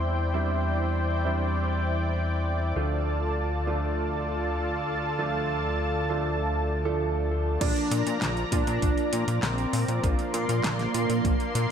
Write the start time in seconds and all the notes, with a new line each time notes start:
Already playing: E2 G3 C4 D4 E4 C5 D5 G5
0.34 G3 C4 D4 E4
1.25 G3 C4 D4 E4
2.76 D2 F3 A3 D4 F4 A4 A5
3.67 F3 A3 D4 F4
5.19 F3 A3 D4 F4
6.10 F3 A3 D4 F4
6.85 F3 A3 D4 A4
7.61 A#1 F3 A#3 D4 F4 A#4 D5 A#5, kick, closed hi-hat, crash
7.76 closed hi-hat
7.91 A#2, closed hi-hat
8.07 A#2, closed hi-hat
8.22 A#1, snare, clap, closed hi-hat
8.37 closed hi-hat
8.52 A#2 F3 A#3 D4 F4 D5, kick, closed hi-hat
8.67 A#2, closed hi-hat
8.82 A#1, kick, closed hi-hat
8.98 closed hi-hat
9.13 A#2, closed hi-hat
9.28 A#2, closed hi-hat
9.43 A#1 C4 C5, snare, clap, closed hi-hat
9.58 closed hi-hat
9.73 A#2, open hi-hat
9.88 A#2, closed hi-hat
10.03 A#1 F3 A#3 D4 F4 C6, kick, closed hi-hat
10.19 closed hi-hat
10.34 A#2 A#3 A#4, closed hi-hat
10.49 A#2, closed hi-hat
10.64 A#1, snare, clap, closed hi-hat
10.79 snare, closed hi-hat
10.94 A#2 F3 A#3 D4 F4, closed hi-hat
11.10 A#2, closed hi-hat
11.25 A#1, kick, closed hi-hat
11.40 closed hi-hat
11.55 A#2, closed hi-hat